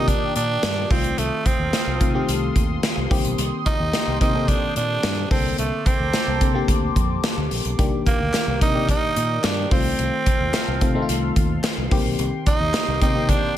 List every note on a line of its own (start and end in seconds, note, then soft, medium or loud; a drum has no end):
0.00 0.12 C3 medium
0.00 0.90 D#3 medium
0.00 0.92 A#3 medium
0.00 0.93 D4 medium
0.00 0.10 D#4 loud
0.00 0.91 F4 medium
0.00 0.93 G4 medium
0.00 0.89 A#4 medium
0.00 0.89 G5 medium
0.00 0.89 D6 medium
0.00 0.89 D#6 medium
0.08 0.35 D4 medium
0.08 kick medium
0.08 closed hi-hat medium
0.36 0.56 A#2 medium
0.36 0.92 D4 loud
0.36 closed hi-hat medium
0.63 0.84 G2 medium
0.63 snare loud
0.63 closed hi-hat medium
0.90 1.11 C2 medium
0.90 1.79 D#3 medium
0.90 1.79 A3 medium
0.90 1.20 C4 medium
0.90 1.79 C4 medium
0.90 1.79 F4 medium
0.90 3.09 A4 medium
0.90 3.09 F5 medium
0.90 5.27 C6 medium
0.90 5.27 D#6 medium
0.90 kick loud
0.90 open hi-hat medium
1.04 closed hi-hat medium
1.18 1.28 C2 loud
1.18 1.48 A3 medium
1.18 closed hi-hat medium
1.46 2.29 C4 medium
1.46 kick medium
1.46 closed hi-hat medium
1.59 1.70 D#2 medium
1.73 snare loud
1.73 closed hi-hat medium
1.87 1.97 C2 medium
2.00 2.21 C3 medium
2.00 2.09 D#3 medium
2.00 2.09 A3 medium
2.00 2.09 C4 medium
2.00 2.10 F4 medium
2.00 kick medium
2.00 closed hi-hat medium
2.14 2.83 D#3 medium
2.14 2.83 A3 medium
2.14 2.83 C4 medium
2.14 2.84 G4 medium
2.28 2.49 C2 medium
2.28 closed hi-hat medium
2.56 2.76 D#2 medium
2.56 kick medium
2.56 closed hi-hat medium
2.83 snare loud
2.83 closed hi-hat medium
2.97 3.07 C2 medium
3.10 3.21 C2 loud
3.10 3.99 D#3 medium
3.10 3.99 A#3 medium
3.10 5.29 A#3 medium
3.10 3.99 C4 medium
3.10 3.99 G4 medium
3.10 5.29 G5 medium
3.10 kick loud
3.10 open hi-hat medium
3.25 3.35 B1 medium
3.25 closed hi-hat medium
3.38 3.49 C2 loud
3.38 closed hi-hat medium
3.66 4.17 D#4 loud
3.66 kick medium
3.66 closed hi-hat medium
3.80 3.90 D#2 medium
3.93 snare loud
3.93 closed hi-hat medium
4.07 4.18 C2 medium
4.20 4.52 C3 medium
4.20 4.29 D#3 medium
4.20 4.29 A#3 medium
4.20 4.30 C4 medium
4.20 4.50 D#4 loud
4.20 4.30 G4 medium
4.20 kick medium
4.20 closed hi-hat medium
4.34 5.03 D#3 medium
4.34 5.03 A#3 medium
4.34 5.04 C4 medium
4.34 5.04 A4 medium
4.48 4.76 D4 medium
4.48 kick medium
4.48 closed hi-hat medium
4.76 4.97 A#2 medium
4.76 5.27 D4 loud
4.76 closed hi-hat medium
5.03 5.24 G2 medium
5.03 snare loud
5.03 closed hi-hat medium
5.30 5.52 C2 loud
5.30 6.19 D3 medium
5.30 6.19 A#3 medium
5.30 7.76 A#3 medium
5.30 5.57 C4 medium
5.30 6.19 C4 medium
5.30 6.19 A4 medium
5.30 7.76 A5 medium
5.30 7.77 C6 medium
5.30 9.68 D6 medium
5.30 kick loud
5.30 open hi-hat medium
5.58 5.69 C2 loud
5.58 5.88 A3 medium
5.58 closed hi-hat medium
5.86 6.69 C4 medium
5.86 kick medium
5.86 closed hi-hat medium
6.00 6.10 D2 medium
6.14 snare loud
6.14 closed hi-hat medium
6.28 6.38 C2 medium
6.41 6.62 C3 medium
6.41 6.49 D3 medium
6.41 6.50 A#3 medium
6.41 6.50 C4 medium
6.41 6.50 A4 medium
6.41 kick medium
6.41 closed hi-hat medium
6.54 7.23 D3 medium
6.54 7.23 A#3 medium
6.54 7.24 C4 medium
6.54 7.24 G4 medium
6.68 6.89 D2 medium
6.68 kick medium
6.68 closed hi-hat medium
6.96 7.17 F2 medium
6.96 kick medium
6.96 closed hi-hat medium
7.24 snare loud
7.24 closed hi-hat medium
7.37 7.48 D2 medium
7.51 7.62 A#1 medium
7.51 open hi-hat medium
7.65 7.75 B1 medium
7.65 closed hi-hat medium
7.78 7.89 C2 medium
7.78 8.30 D#3 medium
7.78 8.30 A#3 medium
7.78 8.30 D4 medium
7.78 8.31 G4 loud
7.78 9.70 A#4 medium
7.78 9.69 G5 medium
7.78 kick loud
7.78 closed hi-hat medium
8.06 8.58 A#3 medium
8.06 kick medium
8.06 closed hi-hat medium
8.20 8.30 D2 medium
8.34 snare loud
8.34 clap medium
8.34 closed hi-hat medium
8.48 8.58 C2 medium
8.61 8.92 C3 medium
8.61 8.70 D#3 medium
8.61 8.70 A#3 medium
8.61 8.70 D4 medium
8.61 8.87 D#4 loud
8.61 8.70 A#4 medium
8.61 kick medium
8.61 closed hi-hat medium
8.74 9.43 D#3 medium
8.74 9.44 A#3 medium
8.74 9.44 G4 medium
8.74 9.44 D5 medium
8.89 9.46 D#4 loud
8.89 kick medium
8.89 closed hi-hat medium
9.16 9.37 A#2 medium
9.16 closed hi-hat medium
9.44 9.65 G2 medium
9.44 9.72 D4 medium
9.44 snare loud
9.44 clap medium
9.44 closed hi-hat medium
9.71 9.92 C2 medium
9.71 10.59 D#3 medium
9.71 10.59 A3 medium
9.71 10.60 C4 medium
9.71 11.33 C4 medium
9.71 10.60 F4 medium
9.71 11.89 A4 medium
9.71 11.89 F5 medium
9.71 13.58 C6 medium
9.71 kick loud
9.71 open hi-hat medium
9.99 10.09 C2 loud
9.99 closed hi-hat medium
10.26 kick medium
10.26 closed hi-hat medium
10.40 10.51 D#2 medium
10.54 snare loud
10.54 clap medium
10.54 closed hi-hat medium
10.68 10.78 C2 medium
10.81 11.02 C3 medium
10.81 10.90 D#3 medium
10.81 10.90 A3 medium
10.81 10.90 C4 medium
10.81 10.90 F4 medium
10.81 kick medium
10.81 closed hi-hat medium
10.95 11.64 D#3 medium
10.95 11.64 A3 medium
10.95 11.64 C4 medium
10.95 11.02 D#4 medium
11.02 11.67 F4 loud
11.09 11.30 C2 medium
11.09 closed hi-hat medium
11.36 11.57 D#2 medium
11.36 kick medium
11.36 closed hi-hat medium
11.64 snare loud
11.64 clap medium
11.64 closed hi-hat medium
11.78 11.88 C2 medium
11.91 12.02 C2 loud
11.91 12.79 D#3 medium
11.91 12.80 A#3 medium
11.91 13.58 A#3 medium
11.91 12.80 C4 medium
11.91 12.80 G4 loud
11.91 13.58 G5 medium
11.91 kick loud
11.91 open hi-hat medium
12.05 12.16 B1 medium
12.19 12.29 C2 loud
12.19 closed hi-hat medium
12.46 12.98 D#4 loud
12.46 kick medium
12.46 closed hi-hat medium
12.60 12.71 D#2 medium
12.74 snare loud
12.74 clap medium
12.74 closed hi-hat medium
12.88 12.98 C2 medium
13.01 13.33 C3 loud
13.01 13.10 D#3 medium
13.01 13.10 A#3 medium
13.01 13.10 C4 medium
13.01 13.31 D#4 loud
13.01 13.10 G4 medium
13.01 kick medium
13.01 closed hi-hat medium
13.14 13.58 D#3 medium
13.14 13.58 A#3 medium
13.14 13.58 C4 medium
13.14 13.58 G4 medium
13.29 13.57 D4 loud
13.29 kick medium
13.29 closed hi-hat medium